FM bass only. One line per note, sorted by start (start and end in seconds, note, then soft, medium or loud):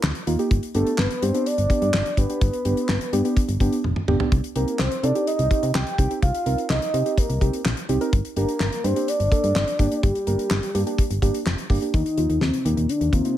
0.03 0.12 D2 medium
0.27 0.36 D#2 medium
0.51 0.60 G1 loud
0.75 0.84 G1 loud
0.99 1.08 G1 loud
1.22 1.31 G2 loud
1.58 1.67 G1 loud
1.82 1.91 G2 loud
1.94 2.03 G1 loud
2.17 2.26 G1 loud
2.41 2.50 G1 loud
2.65 2.74 G1 loud
2.89 2.98 G1 loud
3.13 3.22 G2 loud
3.49 3.58 G1 loud
3.60 3.69 G1 loud
3.84 3.93 F1 loud
4.08 4.17 G1 medium
4.32 4.41 C2 loud
4.56 4.65 C2 loud
4.80 4.89 C2 loud
5.03 5.12 C3 loud
5.39 5.48 C2 loud
5.63 5.72 C3 loud
5.75 5.84 C2 loud
5.98 6.07 C2 loud
6.22 6.31 C2 loud
6.46 6.55 C2 loud
6.70 6.79 C2 loud
6.94 7.03 C3 loud
7.29 7.39 C2 loud
7.41 7.50 C2 loud
7.65 7.74 A#1 medium
7.89 7.98 C2 medium
8.13 8.22 G1 loud
8.37 8.46 G1 loud
8.60 8.69 G1 loud
8.84 8.93 G2 loud
9.20 9.29 G1 loud
9.44 9.53 G2 loud
9.56 9.65 G1 loud
9.79 9.88 G1 loud
10.03 10.12 G1 loud
10.27 10.36 G1 loud
10.51 10.60 G1 loud
10.75 10.84 G2 loud
11.11 11.20 G1 loud
11.22 11.31 G1 loud
11.46 11.55 F1 medium
11.70 11.79 G1 loud
11.94 12.03 D#2 loud
12.18 12.27 D#2 loud
12.30 12.39 D#2 medium
12.42 12.50 D#2 loud
12.65 12.74 D#2 loud
12.77 12.86 D#2 loud
13.01 13.10 D#2 medium
13.13 13.22 D#2 loud